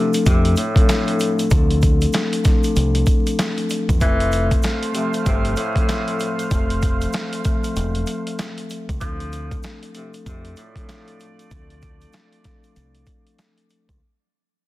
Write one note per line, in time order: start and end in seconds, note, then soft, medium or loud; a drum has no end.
0.00 0.12 C3 medium
0.00 0.52 F3 medium
0.00 0.53 A3 medium
0.00 0.53 C4 medium
0.00 0.53 D4 medium
0.00 0.54 A4 loud
0.13 closed hi-hat medium
0.13 shaker soft
0.26 0.53 F2 loud
0.26 0.54 C3 medium
0.26 kick loud
0.26 closed hi-hat medium
0.26 shaker medium
0.45 closed hi-hat soft
0.56 1.47 A2 medium
0.56 closed hi-hat medium
0.56 shaker medium
0.74 1.45 F3 loud
0.74 1.46 A3 loud
0.74 1.46 C4 medium
0.74 1.46 D4 medium
0.74 1.47 A4 loud
0.74 kick loud
0.74 closed hi-hat medium
0.89 snare loud
0.89 closed hi-hat medium
0.89 shaker medium
1.08 closed hi-hat medium
1.20 closed hi-hat medium
1.20 shaker medium
1.39 closed hi-hat medium
1.39 shaker soft
1.50 2.05 D2 loud
1.50 2.39 F3 medium
1.50 2.39 A3 medium
1.50 2.40 C4 medium
1.50 2.40 D4 medium
1.50 2.40 A4 loud
1.50 kick loud
1.50 closed hi-hat loud
1.50 shaker medium
1.71 closed hi-hat medium
1.82 kick loud
1.82 closed hi-hat medium
1.82 shaker medium
2.01 closed hi-hat medium
2.01 shaker soft
2.13 snare loud
2.13 closed hi-hat medium
2.13 shaker medium
2.33 closed hi-hat medium
2.43 3.90 F3 medium
2.43 3.90 A3 medium
2.43 3.91 C4 medium
2.43 3.91 D4 medium
2.43 3.92 A4 loud
2.43 kick loud
2.43 snare soft
2.43 closed hi-hat medium
2.43 shaker medium
2.63 closed hi-hat medium
2.63 shaker medium
2.76 3.03 C2 loud
2.76 closed hi-hat medium
2.76 shaker medium
2.95 closed hi-hat soft
3.06 kick loud
3.06 closed hi-hat medium
3.06 shaker medium
3.27 closed hi-hat medium
3.27 shaker medium
3.39 snare loud
3.39 closed hi-hat medium
3.39 shaker medium
3.58 closed hi-hat soft
3.70 closed hi-hat medium
3.70 shaker medium
3.89 4.00 E2 loud
3.89 kick medium
3.89 closed hi-hat medium
3.89 shaker soft
4.00 4.55 F1 loud
4.00 4.60 E3 loud
4.00 4.88 A3 medium
4.00 8.65 A3 medium
4.00 4.89 C4 medium
4.00 4.89 A4 loud
4.00 8.65 C5 loud
4.00 4.89 E5 medium
4.00 8.65 F5 medium
4.00 kick loud
4.00 closed hi-hat loud
4.00 shaker medium
4.20 closed hi-hat medium
4.32 closed hi-hat medium
4.32 shaker medium
4.51 kick loud
4.51 closed hi-hat medium
4.51 shaker soft
4.63 snare loud
4.63 closed hi-hat medium
4.63 shaker medium
4.83 closed hi-hat medium
4.94 5.11 C3 medium
4.94 5.53 F3 medium
4.94 5.53 A3 medium
4.94 5.54 C4 medium
4.94 5.54 A4 loud
4.94 5.54 E5 medium
4.94 closed hi-hat medium
4.94 shaker soft
5.13 closed hi-hat medium
5.13 shaker soft
5.25 5.53 G1 loud
5.25 5.54 C3 medium
5.25 kick loud
5.25 closed hi-hat medium
5.25 shaker medium
5.45 closed hi-hat soft
5.56 6.47 A2 loud
5.56 closed hi-hat medium
5.56 shaker medium
5.73 6.45 F3 loud
5.73 6.45 A3 medium
5.73 6.45 C4 medium
5.73 6.46 A4 loud
5.73 6.46 E5 medium
5.73 kick loud
5.73 closed hi-hat medium
5.89 snare loud
5.89 closed hi-hat medium
5.89 shaker medium
6.08 closed hi-hat soft
6.20 closed hi-hat medium
6.20 shaker medium
6.39 closed hi-hat medium
6.39 shaker soft
6.50 7.05 F1 loud
6.50 7.38 F3 loud
6.50 7.39 A3 medium
6.50 7.39 C4 medium
6.50 7.40 A4 loud
6.50 7.39 E5 medium
6.50 kick loud
6.50 closed hi-hat loud
6.50 shaker medium
6.70 closed hi-hat medium
6.82 kick loud
6.82 closed hi-hat medium
6.82 shaker soft
7.01 closed hi-hat medium
7.01 shaker soft
7.13 snare loud
7.13 closed hi-hat medium
7.13 shaker medium
7.33 closed hi-hat medium
7.43 8.90 F3 loud
7.43 8.90 A3 medium
7.43 8.91 C4 medium
7.43 8.91 A4 loud
7.43 8.91 E5 medium
7.43 kick loud
7.43 closed hi-hat medium
7.43 shaker soft
7.63 closed hi-hat medium
7.63 shaker soft
7.76 8.03 E1 loud
7.76 closed hi-hat medium
7.76 shaker medium
7.95 closed hi-hat soft
8.06 closed hi-hat medium
8.06 shaker medium
8.27 closed hi-hat medium
8.39 snare loud
8.39 closed hi-hat medium
8.39 shaker medium
8.58 closed hi-hat medium
8.70 closed hi-hat medium
8.70 shaker medium
8.89 9.00 C#2 medium
8.89 kick loud
8.89 closed hi-hat medium
8.89 shaker soft
9.01 9.55 D2 loud
9.01 9.60 F3 loud
9.01 9.89 F3 medium
9.01 9.89 A3 medium
9.01 9.89 C4 medium
9.01 9.90 D4 medium
9.01 9.90 A4 loud
9.01 kick loud
9.01 closed hi-hat loud
9.01 shaker medium
9.20 closed hi-hat medium
9.32 closed hi-hat medium
9.32 shaker soft
9.51 kick loud
9.51 closed hi-hat medium
9.51 shaker soft
9.63 snare loud
9.63 closed hi-hat medium
9.63 shaker medium
9.83 closed hi-hat medium
9.93 10.12 C3 medium
9.93 10.52 F3 loud
9.93 10.53 A3 medium
9.93 10.53 C4 medium
9.93 10.53 D4 medium
9.93 10.54 A4 loud
9.93 closed hi-hat medium
9.93 shaker soft
10.14 closed hi-hat medium
10.14 shaker medium
10.26 10.53 F2 loud
10.26 10.54 C3 medium
10.26 13.66 A3 medium
10.26 13.66 F4 medium
10.26 13.66 D5 loud
10.26 kick loud
10.26 closed hi-hat medium
10.26 shaker medium
10.45 closed hi-hat soft
10.56 11.47 A2 loud
10.56 closed hi-hat medium
10.56 shaker medium
10.74 11.45 F3 loud
10.74 11.46 A3 medium
10.74 11.46 C4 medium
10.74 11.46 D4 medium
10.74 11.47 A4 loud
10.74 kick loud
10.74 closed hi-hat medium
10.89 snare loud
10.89 closed hi-hat medium
10.89 shaker medium
11.08 closed hi-hat medium
11.20 closed hi-hat medium
11.20 shaker medium
11.39 closed hi-hat medium
11.39 shaker soft
11.51 12.05 D2 loud
11.51 12.39 F3 medium
11.51 12.39 A3 medium
11.51 12.40 C4 medium
11.51 12.40 D4 medium
11.51 12.40 A4 loud
11.51 kick loud
11.51 closed hi-hat loud
11.51 shaker medium
11.70 closed hi-hat medium
11.82 kick loud
11.82 closed hi-hat medium
11.82 shaker medium
12.01 closed hi-hat medium
12.01 shaker soft
12.13 snare loud
12.13 closed hi-hat medium
12.13 shaker medium
12.33 closed hi-hat medium
12.43 13.90 F3 loud
12.43 13.90 A3 medium
12.43 13.91 C4 medium
12.43 13.91 D4 medium
12.43 13.91 A4 loud
12.43 kick loud
12.43 snare soft
12.43 closed hi-hat medium
12.43 shaker soft
12.64 closed hi-hat medium
12.64 shaker soft
12.76 13.03 C2 loud
12.76 closed hi-hat medium
12.76 shaker medium
12.95 closed hi-hat soft
13.06 kick loud
13.06 closed hi-hat medium
13.06 shaker medium
13.27 closed hi-hat medium
13.38 snare loud
13.38 closed hi-hat loud
13.38 shaker medium
13.58 closed hi-hat medium
13.70 closed hi-hat medium
13.70 shaker medium
13.89 14.00 C#2 medium
13.89 kick loud
13.89 closed hi-hat medium
13.89 shaker soft